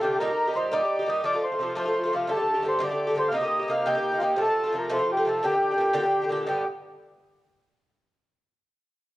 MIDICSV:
0, 0, Header, 1, 3, 480
1, 0, Start_track
1, 0, Key_signature, -2, "minor"
1, 0, Tempo, 350263
1, 256, Time_signature, 6, 3, 24, 8
1, 12557, End_track
2, 0, Start_track
2, 0, Title_t, "Accordion"
2, 0, Program_c, 0, 21
2, 22, Note_on_c, 0, 67, 87
2, 237, Note_off_c, 0, 67, 0
2, 269, Note_on_c, 0, 70, 105
2, 720, Note_off_c, 0, 70, 0
2, 773, Note_on_c, 0, 72, 78
2, 992, Note_on_c, 0, 74, 81
2, 996, Note_off_c, 0, 72, 0
2, 1481, Note_on_c, 0, 75, 88
2, 1490, Note_off_c, 0, 74, 0
2, 1710, Note_off_c, 0, 75, 0
2, 1716, Note_on_c, 0, 74, 105
2, 1976, Note_off_c, 0, 74, 0
2, 1976, Note_on_c, 0, 72, 85
2, 2394, Note_off_c, 0, 72, 0
2, 2456, Note_on_c, 0, 72, 94
2, 2942, Note_off_c, 0, 72, 0
2, 2953, Note_on_c, 0, 65, 76
2, 3166, Note_off_c, 0, 65, 0
2, 3170, Note_on_c, 0, 69, 101
2, 3659, Note_off_c, 0, 69, 0
2, 3674, Note_on_c, 0, 72, 89
2, 3885, Note_on_c, 0, 74, 97
2, 3887, Note_off_c, 0, 72, 0
2, 4370, Note_on_c, 0, 72, 88
2, 4377, Note_off_c, 0, 74, 0
2, 4501, Note_off_c, 0, 72, 0
2, 4504, Note_on_c, 0, 77, 85
2, 4586, Note_off_c, 0, 77, 0
2, 4589, Note_on_c, 0, 75, 106
2, 5082, Note_on_c, 0, 77, 87
2, 5089, Note_off_c, 0, 75, 0
2, 5292, Note_on_c, 0, 79, 96
2, 5311, Note_off_c, 0, 77, 0
2, 5725, Note_on_c, 0, 65, 64
2, 5741, Note_off_c, 0, 79, 0
2, 5785, Note_off_c, 0, 65, 0
2, 5789, Note_on_c, 0, 67, 85
2, 6025, Note_off_c, 0, 67, 0
2, 6046, Note_on_c, 0, 69, 114
2, 6537, Note_off_c, 0, 69, 0
2, 6547, Note_on_c, 0, 70, 84
2, 6757, Note_on_c, 0, 72, 85
2, 6763, Note_off_c, 0, 70, 0
2, 6991, Note_off_c, 0, 72, 0
2, 7012, Note_on_c, 0, 67, 91
2, 7235, Note_on_c, 0, 69, 85
2, 7241, Note_off_c, 0, 67, 0
2, 7462, Note_on_c, 0, 67, 110
2, 7467, Note_off_c, 0, 69, 0
2, 8615, Note_off_c, 0, 67, 0
2, 8895, Note_on_c, 0, 67, 89
2, 9139, Note_off_c, 0, 67, 0
2, 12557, End_track
3, 0, Start_track
3, 0, Title_t, "Bouzouki"
3, 0, Program_c, 1, 25
3, 16, Note_on_c, 1, 48, 64
3, 38, Note_on_c, 1, 50, 65
3, 44, Note_on_c, 1, 57, 73
3, 57, Note_on_c, 1, 65, 60
3, 251, Note_off_c, 1, 48, 0
3, 261, Note_off_c, 1, 50, 0
3, 264, Note_off_c, 1, 57, 0
3, 271, Note_off_c, 1, 65, 0
3, 279, Note_on_c, 1, 46, 67
3, 288, Note_on_c, 1, 55, 77
3, 292, Note_on_c, 1, 63, 67
3, 307, Note_on_c, 1, 67, 82
3, 386, Note_off_c, 1, 67, 0
3, 398, Note_off_c, 1, 46, 0
3, 403, Note_off_c, 1, 55, 0
3, 403, Note_on_c, 1, 67, 47
3, 405, Note_off_c, 1, 63, 0
3, 424, Note_on_c, 1, 63, 46
3, 453, Note_on_c, 1, 55, 34
3, 632, Note_off_c, 1, 67, 0
3, 648, Note_on_c, 1, 67, 54
3, 651, Note_off_c, 1, 63, 0
3, 665, Note_on_c, 1, 63, 46
3, 666, Note_off_c, 1, 55, 0
3, 691, Note_on_c, 1, 55, 35
3, 733, Note_on_c, 1, 46, 55
3, 739, Note_off_c, 1, 55, 0
3, 749, Note_off_c, 1, 63, 0
3, 755, Note_off_c, 1, 67, 0
3, 755, Note_on_c, 1, 55, 57
3, 766, Note_on_c, 1, 63, 60
3, 777, Note_on_c, 1, 67, 64
3, 964, Note_off_c, 1, 46, 0
3, 980, Note_on_c, 1, 46, 81
3, 981, Note_off_c, 1, 55, 0
3, 982, Note_off_c, 1, 63, 0
3, 991, Note_off_c, 1, 67, 0
3, 995, Note_on_c, 1, 55, 82
3, 998, Note_on_c, 1, 63, 97
3, 1007, Note_on_c, 1, 67, 96
3, 1109, Note_off_c, 1, 46, 0
3, 1116, Note_off_c, 1, 67, 0
3, 1117, Note_off_c, 1, 55, 0
3, 1119, Note_off_c, 1, 63, 0
3, 1132, Note_on_c, 1, 67, 54
3, 1153, Note_on_c, 1, 63, 44
3, 1167, Note_on_c, 1, 55, 44
3, 1342, Note_off_c, 1, 67, 0
3, 1359, Note_on_c, 1, 67, 55
3, 1369, Note_off_c, 1, 63, 0
3, 1383, Note_off_c, 1, 55, 0
3, 1386, Note_on_c, 1, 63, 52
3, 1403, Note_on_c, 1, 55, 41
3, 1458, Note_on_c, 1, 46, 61
3, 1469, Note_off_c, 1, 55, 0
3, 1471, Note_off_c, 1, 67, 0
3, 1484, Note_off_c, 1, 63, 0
3, 1486, Note_on_c, 1, 55, 58
3, 1502, Note_on_c, 1, 67, 75
3, 1504, Note_on_c, 1, 63, 63
3, 1688, Note_off_c, 1, 46, 0
3, 1694, Note_off_c, 1, 63, 0
3, 1694, Note_on_c, 1, 48, 54
3, 1695, Note_off_c, 1, 55, 0
3, 1699, Note_on_c, 1, 57, 64
3, 1701, Note_on_c, 1, 53, 68
3, 1711, Note_off_c, 1, 67, 0
3, 1717, Note_on_c, 1, 65, 80
3, 1802, Note_off_c, 1, 65, 0
3, 1818, Note_on_c, 1, 65, 41
3, 1827, Note_off_c, 1, 48, 0
3, 1829, Note_off_c, 1, 57, 0
3, 1830, Note_off_c, 1, 53, 0
3, 1849, Note_on_c, 1, 57, 43
3, 1860, Note_on_c, 1, 53, 37
3, 2066, Note_off_c, 1, 65, 0
3, 2082, Note_on_c, 1, 65, 47
3, 2085, Note_off_c, 1, 57, 0
3, 2090, Note_off_c, 1, 53, 0
3, 2103, Note_on_c, 1, 57, 39
3, 2118, Note_on_c, 1, 53, 34
3, 2179, Note_on_c, 1, 48, 46
3, 2180, Note_off_c, 1, 53, 0
3, 2192, Note_off_c, 1, 57, 0
3, 2193, Note_off_c, 1, 65, 0
3, 2196, Note_on_c, 1, 53, 62
3, 2209, Note_on_c, 1, 57, 56
3, 2227, Note_on_c, 1, 65, 59
3, 2388, Note_off_c, 1, 48, 0
3, 2400, Note_off_c, 1, 53, 0
3, 2403, Note_off_c, 1, 57, 0
3, 2404, Note_on_c, 1, 48, 74
3, 2416, Note_on_c, 1, 53, 76
3, 2419, Note_on_c, 1, 57, 69
3, 2424, Note_off_c, 1, 65, 0
3, 2440, Note_on_c, 1, 65, 77
3, 2524, Note_off_c, 1, 65, 0
3, 2540, Note_on_c, 1, 65, 51
3, 2542, Note_off_c, 1, 48, 0
3, 2548, Note_off_c, 1, 53, 0
3, 2550, Note_off_c, 1, 57, 0
3, 2570, Note_on_c, 1, 57, 52
3, 2584, Note_on_c, 1, 53, 39
3, 2774, Note_off_c, 1, 65, 0
3, 2790, Note_on_c, 1, 65, 55
3, 2801, Note_off_c, 1, 57, 0
3, 2812, Note_off_c, 1, 53, 0
3, 2817, Note_on_c, 1, 57, 46
3, 2841, Note_on_c, 1, 53, 45
3, 2907, Note_off_c, 1, 65, 0
3, 2908, Note_off_c, 1, 53, 0
3, 2916, Note_on_c, 1, 48, 61
3, 2920, Note_off_c, 1, 57, 0
3, 2925, Note_on_c, 1, 53, 66
3, 2942, Note_on_c, 1, 57, 59
3, 2960, Note_on_c, 1, 65, 62
3, 3112, Note_off_c, 1, 48, 0
3, 3118, Note_on_c, 1, 43, 58
3, 3121, Note_off_c, 1, 53, 0
3, 3122, Note_off_c, 1, 57, 0
3, 3127, Note_on_c, 1, 50, 59
3, 3138, Note_off_c, 1, 65, 0
3, 3139, Note_on_c, 1, 57, 72
3, 3144, Note_on_c, 1, 67, 64
3, 3229, Note_off_c, 1, 67, 0
3, 3246, Note_on_c, 1, 67, 45
3, 3253, Note_off_c, 1, 57, 0
3, 3259, Note_off_c, 1, 43, 0
3, 3263, Note_off_c, 1, 50, 0
3, 3270, Note_on_c, 1, 57, 37
3, 3292, Note_on_c, 1, 50, 35
3, 3464, Note_off_c, 1, 67, 0
3, 3480, Note_on_c, 1, 67, 42
3, 3481, Note_off_c, 1, 57, 0
3, 3497, Note_on_c, 1, 57, 44
3, 3513, Note_off_c, 1, 50, 0
3, 3529, Note_on_c, 1, 50, 35
3, 3593, Note_off_c, 1, 50, 0
3, 3597, Note_on_c, 1, 43, 54
3, 3609, Note_off_c, 1, 57, 0
3, 3610, Note_on_c, 1, 50, 52
3, 3612, Note_off_c, 1, 67, 0
3, 3626, Note_on_c, 1, 57, 68
3, 3640, Note_on_c, 1, 67, 60
3, 3803, Note_off_c, 1, 43, 0
3, 3819, Note_on_c, 1, 43, 79
3, 3823, Note_off_c, 1, 57, 0
3, 3825, Note_off_c, 1, 50, 0
3, 3840, Note_off_c, 1, 67, 0
3, 3840, Note_on_c, 1, 57, 86
3, 3841, Note_on_c, 1, 50, 87
3, 3857, Note_on_c, 1, 67, 84
3, 3944, Note_off_c, 1, 67, 0
3, 3960, Note_on_c, 1, 67, 49
3, 3967, Note_off_c, 1, 57, 0
3, 3969, Note_off_c, 1, 43, 0
3, 3980, Note_off_c, 1, 50, 0
3, 3983, Note_on_c, 1, 57, 56
3, 4000, Note_on_c, 1, 50, 43
3, 4191, Note_off_c, 1, 67, 0
3, 4207, Note_on_c, 1, 67, 56
3, 4214, Note_off_c, 1, 57, 0
3, 4230, Note_on_c, 1, 57, 53
3, 4233, Note_off_c, 1, 50, 0
3, 4250, Note_on_c, 1, 50, 45
3, 4310, Note_off_c, 1, 50, 0
3, 4319, Note_on_c, 1, 43, 60
3, 4326, Note_off_c, 1, 57, 0
3, 4326, Note_on_c, 1, 50, 58
3, 4335, Note_off_c, 1, 67, 0
3, 4342, Note_on_c, 1, 57, 52
3, 4349, Note_on_c, 1, 67, 67
3, 4539, Note_off_c, 1, 43, 0
3, 4545, Note_on_c, 1, 48, 62
3, 4550, Note_off_c, 1, 50, 0
3, 4555, Note_on_c, 1, 58, 76
3, 4564, Note_off_c, 1, 57, 0
3, 4569, Note_off_c, 1, 67, 0
3, 4570, Note_on_c, 1, 63, 65
3, 4585, Note_on_c, 1, 67, 72
3, 4656, Note_off_c, 1, 67, 0
3, 4672, Note_on_c, 1, 67, 49
3, 4675, Note_off_c, 1, 63, 0
3, 4691, Note_on_c, 1, 63, 47
3, 4692, Note_off_c, 1, 48, 0
3, 4697, Note_off_c, 1, 58, 0
3, 4722, Note_on_c, 1, 58, 39
3, 4902, Note_off_c, 1, 67, 0
3, 4918, Note_on_c, 1, 67, 50
3, 4933, Note_off_c, 1, 63, 0
3, 4949, Note_on_c, 1, 63, 39
3, 4950, Note_off_c, 1, 58, 0
3, 4966, Note_on_c, 1, 58, 39
3, 5040, Note_on_c, 1, 48, 63
3, 5045, Note_off_c, 1, 58, 0
3, 5048, Note_off_c, 1, 63, 0
3, 5051, Note_off_c, 1, 67, 0
3, 5061, Note_on_c, 1, 58, 62
3, 5065, Note_on_c, 1, 63, 62
3, 5081, Note_on_c, 1, 67, 65
3, 5268, Note_off_c, 1, 48, 0
3, 5280, Note_off_c, 1, 58, 0
3, 5284, Note_off_c, 1, 63, 0
3, 5284, Note_on_c, 1, 48, 77
3, 5292, Note_off_c, 1, 67, 0
3, 5296, Note_on_c, 1, 58, 77
3, 5300, Note_on_c, 1, 63, 78
3, 5308, Note_on_c, 1, 67, 83
3, 5394, Note_off_c, 1, 67, 0
3, 5410, Note_on_c, 1, 67, 58
3, 5415, Note_off_c, 1, 63, 0
3, 5422, Note_off_c, 1, 48, 0
3, 5428, Note_off_c, 1, 58, 0
3, 5432, Note_on_c, 1, 63, 51
3, 5444, Note_on_c, 1, 58, 43
3, 5624, Note_off_c, 1, 67, 0
3, 5640, Note_on_c, 1, 67, 47
3, 5650, Note_off_c, 1, 63, 0
3, 5667, Note_on_c, 1, 63, 53
3, 5672, Note_off_c, 1, 58, 0
3, 5689, Note_on_c, 1, 58, 44
3, 5756, Note_off_c, 1, 58, 0
3, 5757, Note_on_c, 1, 48, 64
3, 5772, Note_off_c, 1, 67, 0
3, 5772, Note_on_c, 1, 58, 62
3, 5773, Note_off_c, 1, 63, 0
3, 5790, Note_on_c, 1, 63, 67
3, 5807, Note_on_c, 1, 67, 60
3, 5961, Note_off_c, 1, 48, 0
3, 5978, Note_off_c, 1, 58, 0
3, 5978, Note_on_c, 1, 48, 67
3, 5983, Note_on_c, 1, 53, 68
3, 5992, Note_off_c, 1, 63, 0
3, 5994, Note_off_c, 1, 67, 0
3, 5998, Note_on_c, 1, 57, 73
3, 6000, Note_on_c, 1, 65, 74
3, 6087, Note_off_c, 1, 65, 0
3, 6104, Note_on_c, 1, 65, 50
3, 6112, Note_off_c, 1, 57, 0
3, 6128, Note_off_c, 1, 48, 0
3, 6129, Note_on_c, 1, 57, 47
3, 6131, Note_off_c, 1, 53, 0
3, 6152, Note_on_c, 1, 53, 42
3, 6335, Note_off_c, 1, 65, 0
3, 6352, Note_on_c, 1, 65, 51
3, 6362, Note_off_c, 1, 57, 0
3, 6379, Note_on_c, 1, 57, 42
3, 6387, Note_off_c, 1, 53, 0
3, 6404, Note_on_c, 1, 53, 41
3, 6473, Note_off_c, 1, 53, 0
3, 6475, Note_on_c, 1, 48, 55
3, 6487, Note_off_c, 1, 57, 0
3, 6487, Note_off_c, 1, 65, 0
3, 6490, Note_on_c, 1, 53, 57
3, 6503, Note_on_c, 1, 57, 53
3, 6516, Note_on_c, 1, 65, 56
3, 6690, Note_off_c, 1, 48, 0
3, 6693, Note_off_c, 1, 53, 0
3, 6699, Note_off_c, 1, 57, 0
3, 6706, Note_on_c, 1, 48, 88
3, 6709, Note_on_c, 1, 53, 79
3, 6712, Note_off_c, 1, 65, 0
3, 6715, Note_on_c, 1, 57, 86
3, 6728, Note_on_c, 1, 65, 97
3, 6816, Note_off_c, 1, 65, 0
3, 6832, Note_on_c, 1, 65, 54
3, 6840, Note_off_c, 1, 57, 0
3, 6853, Note_off_c, 1, 48, 0
3, 6854, Note_off_c, 1, 53, 0
3, 6857, Note_on_c, 1, 57, 48
3, 6873, Note_on_c, 1, 53, 45
3, 7066, Note_off_c, 1, 65, 0
3, 7082, Note_on_c, 1, 65, 57
3, 7085, Note_off_c, 1, 57, 0
3, 7099, Note_off_c, 1, 53, 0
3, 7101, Note_on_c, 1, 57, 47
3, 7116, Note_on_c, 1, 53, 46
3, 7190, Note_on_c, 1, 48, 51
3, 7194, Note_off_c, 1, 53, 0
3, 7205, Note_off_c, 1, 57, 0
3, 7211, Note_on_c, 1, 53, 56
3, 7212, Note_off_c, 1, 65, 0
3, 7221, Note_on_c, 1, 57, 66
3, 7241, Note_on_c, 1, 65, 60
3, 7429, Note_off_c, 1, 48, 0
3, 7435, Note_on_c, 1, 46, 72
3, 7441, Note_off_c, 1, 53, 0
3, 7447, Note_on_c, 1, 50, 83
3, 7449, Note_off_c, 1, 57, 0
3, 7455, Note_on_c, 1, 62, 68
3, 7460, Note_off_c, 1, 65, 0
3, 7466, Note_on_c, 1, 67, 85
3, 7542, Note_off_c, 1, 67, 0
3, 7558, Note_on_c, 1, 67, 49
3, 7565, Note_off_c, 1, 62, 0
3, 7577, Note_off_c, 1, 46, 0
3, 7581, Note_on_c, 1, 62, 39
3, 7583, Note_off_c, 1, 50, 0
3, 7600, Note_on_c, 1, 50, 43
3, 7804, Note_off_c, 1, 67, 0
3, 7818, Note_off_c, 1, 62, 0
3, 7820, Note_on_c, 1, 67, 42
3, 7834, Note_on_c, 1, 62, 50
3, 7839, Note_off_c, 1, 50, 0
3, 7862, Note_on_c, 1, 50, 39
3, 7909, Note_off_c, 1, 50, 0
3, 7916, Note_on_c, 1, 46, 55
3, 7925, Note_on_c, 1, 50, 58
3, 7931, Note_off_c, 1, 62, 0
3, 7941, Note_off_c, 1, 67, 0
3, 7948, Note_on_c, 1, 62, 64
3, 7957, Note_on_c, 1, 67, 57
3, 8116, Note_off_c, 1, 46, 0
3, 8121, Note_off_c, 1, 50, 0
3, 8132, Note_off_c, 1, 62, 0
3, 8133, Note_off_c, 1, 67, 0
3, 8133, Note_on_c, 1, 46, 99
3, 8137, Note_on_c, 1, 50, 99
3, 8149, Note_on_c, 1, 62, 94
3, 8149, Note_on_c, 1, 67, 99
3, 8247, Note_off_c, 1, 67, 0
3, 8264, Note_on_c, 1, 67, 57
3, 8278, Note_off_c, 1, 62, 0
3, 8286, Note_off_c, 1, 46, 0
3, 8288, Note_off_c, 1, 50, 0
3, 8294, Note_on_c, 1, 62, 54
3, 8307, Note_on_c, 1, 50, 48
3, 8504, Note_off_c, 1, 67, 0
3, 8521, Note_on_c, 1, 67, 50
3, 8526, Note_off_c, 1, 62, 0
3, 8539, Note_off_c, 1, 50, 0
3, 8543, Note_on_c, 1, 62, 47
3, 8555, Note_on_c, 1, 50, 49
3, 8621, Note_off_c, 1, 50, 0
3, 8623, Note_on_c, 1, 46, 65
3, 8637, Note_on_c, 1, 50, 63
3, 8642, Note_off_c, 1, 62, 0
3, 8644, Note_off_c, 1, 67, 0
3, 8659, Note_on_c, 1, 62, 69
3, 8660, Note_on_c, 1, 67, 76
3, 8851, Note_off_c, 1, 50, 0
3, 8855, Note_off_c, 1, 46, 0
3, 8860, Note_on_c, 1, 43, 70
3, 8868, Note_on_c, 1, 50, 69
3, 8873, Note_off_c, 1, 67, 0
3, 8880, Note_off_c, 1, 62, 0
3, 8886, Note_on_c, 1, 59, 69
3, 8889, Note_on_c, 1, 67, 73
3, 9088, Note_off_c, 1, 43, 0
3, 9091, Note_off_c, 1, 50, 0
3, 9101, Note_off_c, 1, 59, 0
3, 9102, Note_off_c, 1, 67, 0
3, 12557, End_track
0, 0, End_of_file